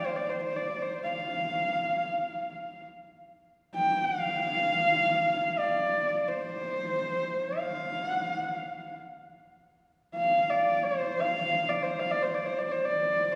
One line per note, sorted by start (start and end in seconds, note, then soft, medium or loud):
0.06 0.18 C5 medium
0.16 0.31 D5 medium
0.30 0.41 C5 medium
0.43 0.58 C5 medium
0.56 0.83 D5 medium
0.82 1.01 C5 medium
1.03 2.84 F5 medium
3.75 4.05 G5 medium
4.04 5.60 F5 loud
5.59 6.30 D5 medium
6.28 7.59 C5 medium
7.57 8.07 F5 medium
8.07 8.21 F#5 medium
8.21 8.35 F5 medium
8.35 8.49 F#5 medium
8.49 8.98 F5 medium
10.15 10.51 F5 medium
10.50 10.87 D5 medium
10.85 11.22 C5 medium
11.20 11.70 F5 medium
11.69 11.85 D5 medium
11.83 12.01 C5 medium
12.00 12.13 F5 medium
12.11 12.24 D5 medium
12.22 12.36 C5 medium
12.34 12.48 D5 medium
12.46 12.60 C5 medium
12.59 12.73 D5 medium
12.72 12.86 C5 medium
12.85 13.34 D5 medium